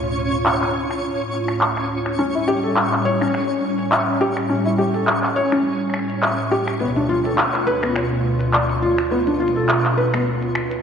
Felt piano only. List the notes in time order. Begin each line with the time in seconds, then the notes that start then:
2.19 C#4
2.35 E4
2.48 G4
2.64 A4
3.05 C#5
3.21 C#4
3.92 E5
4.21 G4
4.50 C#4
4.66 E4
4.78 G4
4.94 A4
5.36 C#5
5.52 C#4
6.23 E5
6.51 G4
6.80 B3
6.96 D4
7.09 F4
7.25 A4
7.67 B4
7.83 B3
8.53 D5
8.82 F4
9.11 B3
9.27 D4
9.40 F4
9.56 A4
9.98 B4
10.14 B3